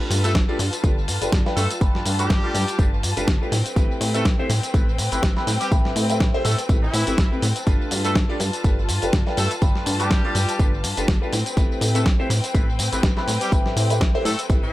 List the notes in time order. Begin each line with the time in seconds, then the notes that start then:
Already playing: A3 D4 F4 G4 B4 A5
0.10 G2, open hi-hat, tambourine
0.24 A3 D4 F4 G4 A4 B4, closed hi-hat, tambourine
0.35 G1, kick, snare, closed hi-hat, tambourine
0.48 A3 D4 F4 G4 D5
0.59 G2, open hi-hat, tambourine
0.73 closed hi-hat, tambourine
0.84 G1 A3 D4 F4 G4 B4, kick, closed hi-hat, tambourine
1.08 G2, open hi-hat, tambourine
1.21 G1 A3 D4 F4 G4 B4, closed hi-hat, tambourine
1.32 G1, kick, snare, closed hi-hat, tambourine
1.46 A3 D4 F4 G4 B4, snare
1.57 G2 A3 A4, open hi-hat, tambourine
1.71 closed hi-hat, tambourine
1.81 G1 A3 D4 F4 G4 B4, kick, closed hi-hat, tambourine
1.95 G2, snare
2.06 G2, open hi-hat, tambourine
2.19 G3 A3 D4 F4 G4 B4, closed hi-hat, tambourine
2.30 G1, kick, snare, closed hi-hat, tambourine
2.43 A3 D4 F4 G4 D5
2.54 G2, open hi-hat, tambourine
2.68 closed hi-hat, tambourine
2.78 G1 A3 D4 F4 G4 B4, kick, closed hi-hat, tambourine
3.03 G2, open hi-hat, tambourine
3.16 G1 A3 D4 F4 G4 B4, closed hi-hat, tambourine
3.28 G1, kick, snare, closed hi-hat, tambourine
3.41 A3 D4 F4 G4 B4
3.52 A2 C4 B4 G5, open hi-hat, tambourine
3.66 closed hi-hat, tambourine
3.76 A1 A3 C4 E4 G4 B4, kick, closed hi-hat, tambourine
4.01 A2, open hi-hat, tambourine
4.14 A3 C4 E4 G4 A4 B4, closed hi-hat, tambourine
4.25 A1, kick, snare, closed hi-hat, tambourine
4.39 A3 C4 E4 G4 C5
4.50 A2, open hi-hat, tambourine
4.63 closed hi-hat, tambourine
4.74 A1 A3 C4 E4 G4 B4, kick, closed hi-hat, tambourine
4.98 A2, open hi-hat, tambourine
5.12 A1 A3 C4 E4 G4 B4, closed hi-hat, tambourine
5.23 A1, kick, snare, closed hi-hat, tambourine
5.36 A3 C4 E4 G4 B4, snare
5.47 A2, open hi-hat, tambourine
5.61 G3 G4, closed hi-hat, tambourine
5.71 A1 A3 C4 E4 G4 B4, kick, closed hi-hat, tambourine
5.85 A2, snare
5.96 A2, open hi-hat, tambourine
6.09 A3 C4 E4 G4 B4, closed hi-hat, tambourine
6.20 A1, kick, snare, closed hi-hat, tambourine
6.34 A3 C4 E4 G4 C5
6.45 A2 A3 A4, open hi-hat, tambourine
6.58 closed hi-hat, tambourine
6.69 A1 A3 C4 E4 G4 B4, kick, closed hi-hat, tambourine
6.83 E3 E4
6.94 A2, open hi-hat, tambourine
7.07 A1 A3 C4 E4 G4 B4, closed hi-hat, tambourine
7.18 A1, kick, snare, closed hi-hat, tambourine
7.31 A3 C4 E4 G4 B4
7.42 A2, open hi-hat, tambourine
7.56 closed hi-hat, tambourine
7.67 G1 A3 D4 F4 G4 B4 A5, kick, closed hi-hat, tambourine
7.91 G2, open hi-hat, tambourine
8.04 A3 D4 F4 G4 A4 B4, closed hi-hat, tambourine
8.15 G1, kick, snare, closed hi-hat, tambourine
8.29 A3 D4 F4 G4 D5
8.40 G2, open hi-hat, tambourine
8.53 closed hi-hat, tambourine
8.64 G1 A3 D4 F4 G4 B4, kick, closed hi-hat, tambourine
8.89 G2, open hi-hat, tambourine
9.02 G1 A3 D4 F4 G4 B4, closed hi-hat, tambourine
9.13 G1, kick, snare, closed hi-hat, tambourine
9.26 A3 D4 F4 G4 B4, snare
9.37 G2 A3 A4, open hi-hat, tambourine
9.51 closed hi-hat, tambourine
9.62 G1 A3 D4 F4 G4 B4, kick, closed hi-hat, tambourine
9.76 snare
9.86 G2, open hi-hat, tambourine
9.99 G3 A3 D4 F4 G4 B4, closed hi-hat, tambourine
10.11 G1, kick, snare, closed hi-hat, tambourine
10.24 A3 D4 F4 G4 D5
10.35 G2, open hi-hat, tambourine
10.49 closed hi-hat, tambourine
10.59 G1 A3 D4 F4 G4 B4, kick, closed hi-hat, tambourine
10.84 G2, open hi-hat, tambourine
10.97 G1 A3 D4 F4 G4 B4, closed hi-hat, tambourine
11.08 G1, kick, snare, closed hi-hat, tambourine
11.21 A3 D4 F4 G4 B4
11.32 A2 C4 B4 G5, open hi-hat, tambourine
11.46 closed hi-hat, tambourine
11.56 A1 A3 C4 E4 G4 B4, kick, closed hi-hat, tambourine
11.81 A2, open hi-hat, tambourine
11.94 A3 C4 E4 G4 A4 B4, closed hi-hat, tambourine
12.06 A1, kick, snare, closed hi-hat, tambourine
12.19 A3 C4 E4 G4 C5
12.30 A2, open hi-hat, tambourine
12.44 closed hi-hat, tambourine
12.54 A1 A3 C4 E4 G4 B4, kick, closed hi-hat, tambourine
12.79 A2, open hi-hat, tambourine
12.92 A1 A3 C4 E4 G4 B4, closed hi-hat, tambourine
13.03 A1, kick, snare, closed hi-hat, tambourine
13.17 A3 C4 E4 G4 B4, snare
13.27 A2, open hi-hat, tambourine
13.41 G3 G4, closed hi-hat, tambourine
13.52 A1 A3 C4 E4 G4 B4, kick, closed hi-hat, tambourine
13.66 A2, snare
13.76 A2, open hi-hat, tambourine
13.90 A3 C4 E4 G4 B4, closed hi-hat, tambourine
14.01 A1, kick, snare, closed hi-hat, tambourine
14.14 A3 C4 E4 G4 C5
14.25 A2 A3 A4, open hi-hat, tambourine
14.39 closed hi-hat, tambourine
14.49 A1 A3 C4 E4 G4 B4, kick, closed hi-hat, tambourine
14.63 A2 E3 E4